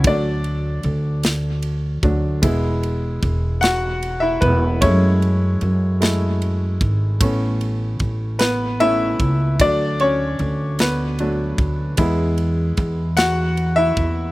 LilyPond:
<<
  \new Staff \with { instrumentName = "Grand piano" } { \time 6/8 \key d \lydian \tempo 4. = 50 d''4. r4. | r4. <fis' fis''>8. <e' e''>16 <b b'>8 | <cis' cis''>4. r4. | r4. <b b'>8 <e' e''>4 |
<d' d''>8 <cis' cis''>4 <b b'>4 r8 | r4. <fis' fis''>8. <e' e''>8. | }
  \new Staff \with { instrumentName = "Grand piano" } { \time 6/8 \key d \lydian <fis a d'>4. r4 <fis a d'>8 | <gis b e'>8 r2 r8 | <gis a e'>4. <gis a e'>8 r4 | <a b cis'>8 r4. <a b cis'>8 r8 |
<fis a>2 <fis a d'>8 r8 | <gis b e'>4. r4. | }
  \new Staff \with { instrumentName = "Upright bass" } { \clef bass \time 6/8 \key d \lydian d,4 d,4. d,8 | e,,4 e,,4. e,,8 | fis,4 fis,4. gis,,8 | a,,4 a,,4. cis,8 |
d,4 d,4. d,8 | e,4 e,4. e,8 | }
  \new DrumStaff \with { instrumentName = "Drums" } \drummode { \time 6/8 <bd cymr>8 cymr8 cymr8 <cymr sn>8 cymr8 <bd cymr>8 | <bd cymr>8 cymr8 <bd cymr>8 <cymr sn>8 cymr8 <bd cymr>8 | <bd cymr>8 cymr8 cymr8 <cymr sn>8 cymr8 <bd cymr>8 | <bd cymr>8 cymr8 <bd cymr>8 <cymr sn>8 cymr8 <bd cymr>8 |
<bd cymr>8 cymr8 cymr8 <cymr sn>8 cymr8 <bd cymr>8 | <bd cymr>8 cymr8 <bd cymr>8 <cymr sn>8 cymr8 <bd cymr>8 | }
>>